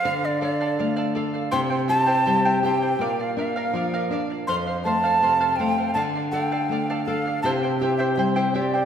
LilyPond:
<<
  \new Staff \with { instrumentName = "Quena" } { \time 2/4 \key d \minor \tempo 4 = 81 f''16 d''16 d''4 r8 | c'''8 a''4 g''8~ | g''16 f''16 f''4 r8 | c'''8 a''4 g''8 |
a''8 g''4 f''8 | a''8 g''16 e''16 c''8 d''8 | }
  \new Staff \with { instrumentName = "Charango" } { \time 2/4 \key d \minor <a' d'' f''>16 <d'' f''>16 <a' d'' f''>16 <a' d'' f''>16 <a' d'' f''>16 <a' d'' f''>16 <a' d'' f''>16 <d'' f''>16 | <e' g' c'' e'' g''>16 <e' c'' g''>16 <e' c'' e'' g''>16 <e' g' c'' e'' g''>16 <e' c'' e'' g''>16 <e' g' c'' e'' g''>16 <e' c'' e'' g''>16 <e' c'' g''>16 | <bes' d'' f''>16 <d'' f''>16 <bes' d'' f''>16 <bes' d'' f''>16 <bes' d'' f''>16 <bes' d'' f''>16 <bes' d'' f''>16 <d'' f''>16 | <a' c'' f''>16 <c'' f''>16 <a' c'' f''>16 <a' c'' f''>16 <a' c'' f''>16 <a' c'' f''>16 <a' c'' f''>16 <c'' f''>16 |
<a' d'' f''>16 <d'' f''>16 <a' d'' f''>16 <a' d'' f''>16 <a' d'' f''>16 <a' d'' f''>16 <a' d'' f''>16 <d'' f''>16 | <e' g' c'' e'' g''>16 <e' c'' g''>16 <e' c'' e'' g''>16 <e' g' c'' e'' g''>16 <e' c'' e'' g''>16 <e' g' c'' e'' g''>16 <e' c'' e'' g''>16 <e' c'' g''>16 | }
  \new Staff \with { instrumentName = "Nylon-string guitar" } { \time 2/4 \key d \minor d8 a'8 a8 a'8 | c8 g'8 g8 g'8 | bes,8 d'8 f8 d'8 | f,8 a8 c8 a8 |
d8 a'8 a8 a'8 | c8 g'8 g8 g'8 | }
>>